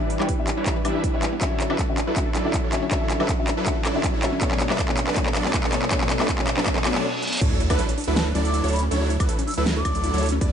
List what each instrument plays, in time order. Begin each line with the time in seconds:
Already playing: grand piano E3 D4 G4 E5, supersaw synth G3 D4 E4 B4 D5, ambient pad G3 E4 D5
0.01 synth arpeggio sound D4
0.10 synth arpeggio sound E4, closed hi-hat
0.19 grand piano E3 D4 G4 G5, supersaw synth G3 D4 E4 B4 C#5, synth arpeggio sound G4, clap, high woodblock
0.29 synth arpeggio sound B4, kick, closed hi-hat
0.38 grand piano E3 D4 G4 E5, synth arpeggio sound B3
0.47 synth arpeggio sound D4, clap, closed hi-hat
0.57 supersaw synth G3 D4 E4 B4 C#5, synth arpeggio sound E4
0.65 grand piano E3 D4 G4 E5, synth arpeggio sound G4, kick, clap, closed hi-hat
0.76 synth arpeggio sound B4
0.84 grand piano E3 D4 G4 E5, supersaw synth G3 D4 E4 B4 E5, synth arpeggio sound B3, closed hi-hat, high woodblock
0.95 synth arpeggio sound D4
1.04 synth arpeggio sound E4, kick, closed hi-hat
1.13 grand piano E3 D4 G4 E5, supersaw synth G3 D4 E4 B4 C#5, synth arpeggio sound G4
1.23 synth arpeggio sound B4, clap, closed hi-hat
1.33 synth arpeggio sound B3
1.40 grand piano D3 C#4 F#4 E5, ambient pad F#3 D4 C#5, supersaw synth F#3 D4 E4 A4 C#5, synth arpeggio sound C#4, kick, clap, closed hi-hat, riser
1.51 synth arpeggio sound D4
1.60 synth arpeggio sound E4, clap, closed hi-hat
1.69 grand piano D3 C#4 F#4 E5, supersaw synth F#3 D4 E4 A4 B4, synth arpeggio sound F#4, high woodblock
1.79 synth arpeggio sound A4, kick, clap, closed hi-hat
1.88 grand piano D3 C#4 F#4 E5, synth arpeggio sound C#4
1.97 synth arpeggio sound D4, clap, closed hi-hat
2.07 supersaw synth F#3 D4 E4 A4 B4, synth arpeggio sound E4
2.15 grand piano D3 C#4 F#4 E5, synth arpeggio sound F#4, kick, clap, closed hi-hat
2.26 synth arpeggio sound A4
2.35 supersaw synth F#3 D4 E4 A4 D5, synth arpeggio sound C#4, clap, closed hi-hat
2.44 grand piano D3 C#4 F#4 E5, synth arpeggio sound D4
2.53 synth arpeggio sound E4, kick, clap, closed hi-hat
2.64 supersaw synth F#3 D4 E4 A4 C#5, synth arpeggio sound F#4
2.71 grand piano D3 C#4 F#4 E5, synth arpeggio sound A4, clap, closed hi-hat
2.82 synth arpeggio sound C#4
2.90 grand piano D3 C#4 F#4 E5, supersaw synth F#3 D4 E4 A4 C#5, synth arpeggio sound C#4, kick, clap, closed hi-hat
3.01 synth arpeggio sound D4
3.10 synth arpeggio sound E4, clap, closed hi-hat
3.19 grand piano D3 C#4 F#4 E5, supersaw synth F#3 D4 E4 A4 B4, synth arpeggio sound F#4, high woodblock
3.29 synth arpeggio sound A4, kick, clap, closed hi-hat
3.38 grand piano D3 C#4 F#4 E5, synth arpeggio sound C#4
3.47 synth arpeggio sound D4, clap, closed hi-hat
3.57 supersaw synth F#3 D4 E4 A4 B4, synth arpeggio sound E4
3.65 grand piano D3 C#4 F#4 E5, synth arpeggio sound F#4, kick, clap, closed hi-hat
3.76 synth arpeggio sound A4
3.85 supersaw synth F#3 D4 E4 A4 D5, synth arpeggio sound C#4, clap, closed hi-hat, high woodblock
3.94 grand piano D3 C#4 F#4 E5, synth arpeggio sound D4
4.03 synth arpeggio sound E4, kick, clap, closed hi-hat
4.14 supersaw synth F#3 D4 E4 A4 C#5, synth arpeggio sound F#4
4.22 grand piano D3 C#4 F#4 E5, synth arpeggio sound A4, clap, closed hi-hat
4.32 synth arpeggio sound C#4
4.40 grand piano B2 A3 D4 C#5, supersaw synth F#3 B3 D4 A4 C#5, synth arpeggio sound B3, ambient pad B3 A4, kick, clap, closed hi-hat
4.51 synth arpeggio sound C#4, clap
4.60 synth arpeggio sound D4, clap, closed hi-hat
4.69 grand piano B2 A3 D4 E5, supersaw synth F#3 B3 D4 A4 B4, synth arpeggio sound F#4, clap, high woodblock
4.79 synth arpeggio sound A4, kick, clap, closed hi-hat
4.88 grand piano B2 A3 D4 C#5, synth arpeggio sound B3, clap
4.97 synth arpeggio sound C#4, clap, closed hi-hat
5.07 supersaw synth F#3 B3 D4 A4 B4, synth arpeggio sound D4, clap
5.15 grand piano B2 A3 D4 C#5, synth arpeggio sound F#4, kick, clap, closed hi-hat
5.26 synth arpeggio sound A4, clap
5.35 supersaw synth F#3 B3 D4 A4 D5, synth arpeggio sound B3, clap, closed hi-hat
5.44 grand piano B2 A3 D4 C#5, synth arpeggio sound C#4, clap
5.54 synth arpeggio sound D4, kick, clap, closed hi-hat
5.64 supersaw synth F#3 B3 D4 A4 C#5, synth arpeggio sound F#4, clap
5.71 grand piano B2 A3 D4 C#5, synth arpeggio sound A4, clap, closed hi-hat
5.82 synth arpeggio sound B3, clap
5.90 grand piano B2 A3 D4 C#5, supersaw synth F#3 B3 D4 A4 C#5, synth arpeggio sound B3, kick, clap, closed hi-hat
6.01 synth arpeggio sound C#4, clap
6.10 synth arpeggio sound D4, clap, closed hi-hat
6.19 grand piano B2 A3 D4 E5, supersaw synth F#3 B3 D4 A4 B4, synth arpeggio sound F#4, clap, high woodblock
6.29 synth arpeggio sound A4, kick, clap, closed hi-hat
6.38 grand piano B2 A3 D4 C#5, synth arpeggio sound B3, clap
6.47 synth arpeggio sound C#4, clap, closed hi-hat
6.57 supersaw synth F#3 B3 D4 A4 B4, synth arpeggio sound D4, clap
6.65 grand piano B2 A3 D4 C#5, synth arpeggio sound F#4, kick, clap, closed hi-hat, reverse cymbal
6.76 synth arpeggio sound A4, clap
6.84 grand piano B2 A3 D4 C#5, supersaw synth F#3 B3 D4 A4 D5, synth arpeggio sound A4, clap, closed hi-hat, high woodblock
6.95 synth arpeggio sound F#4, clap
7.22 closed hi-hat
7.27 closed hi-hat
7.32 closed hi-hat
7.37 closed hi-hat
7.41 sub bass D2, ambient pad C#3 F#3 E4, supersaw synth F#3 D4 E4 A4 C#5, synth arpeggio sound C#4, digital synth lead C#5, kick, closed hi-hat, crash, sub drop
7.51 synth arpeggio sound D4
7.60 synth arpeggio sound E4, closed hi-hat
7.70 sub bass D2, supersaw synth F#3 D4 E4 A4 B4, synth arpeggio sound F#4, digital synth lead B4, kick, closed hi-hat, high woodblock
7.79 synth arpeggio sound A4, closed hi-hat
7.89 synth arpeggio sound C#4, closed hi-hat
7.98 synth arpeggio sound D4, closed hi-hat, open hi-hat
8.04 sub bass D2, supersaw synth F#3 D4 E4 A4 B4, synth arpeggio sound E4, digital synth lead B4, closed hi-hat
8.16 synth arpeggio sound F#4, flute A5, snare, closed hi-hat
8.26 synth arpeggio sound A4
8.35 sub bass D2, supersaw synth F#3 D4 E4 A4 D5, synth arpeggio sound C#4, digital synth lead D5, closed hi-hat
8.45 synth arpeggio sound D4, flute D6, closed hi-hat
8.54 synth arpeggio sound E4, closed hi-hat
8.64 sub bass D2, supersaw synth F#3 D4 E4 A4 C#5, synth arpeggio sound F#4, digital synth lead C#5, closed hi-hat
8.68 closed hi-hat
8.73 synth arpeggio sound A4, flute B5, closed hi-hat
8.76 closed hi-hat
8.79 synth arpeggio sound C#4, closed hi-hat
8.91 sub bass D2, supersaw synth F#3 D4 E4 A4 C#5, synth arpeggio sound C#4, digital synth lead C#5, closed hi-hat
9.02 synth arpeggio sound D4
9.10 synth arpeggio sound E4, closed hi-hat
9.20 sub bass D2, supersaw synth F#3 D4 E4 A4 B4, synth arpeggio sound F#4, digital synth lead B4, kick, closed hi-hat, high woodblock
9.29 synth arpeggio sound A4, closed hi-hat
9.39 synth arpeggio sound C#4, closed hi-hat
9.47 synth arpeggio sound D4, flute E6, closed hi-hat, open hi-hat
9.54 sub bass D2, supersaw synth F#3 D4 E4 A4 B4, synth arpeggio sound E4, digital synth lead B4, flute E6, closed hi-hat
9.66 synth arpeggio sound F#4, snare, closed hi-hat
9.76 synth arpeggio sound A4, flute D6
9.85 sub bass D2, supersaw synth F#3 D4 E4 A4 D5, synth arpeggio sound C#4, digital synth lead D5, kick, closed hi-hat, high woodblock
9.95 synth arpeggio sound D4, closed hi-hat
10.04 synth arpeggio sound E4, closed hi-hat
10.14 sub bass D2, supersaw synth F#3 D4 E4 A4 C#5, synth arpeggio sound F#4, digital synth lead C#5, closed hi-hat
10.18 closed hi-hat
10.22 synth arpeggio sound A4, closed hi-hat
10.26 closed hi-hat
10.29 synth arpeggio sound C#4, closed hi-hat
10.41 sub bass E2, ambient pad D3 G3, supersaw synth G3 D4 E4 B4 D5, synth arpeggio sound B3, digital synth lead D5, kick, closed hi-hat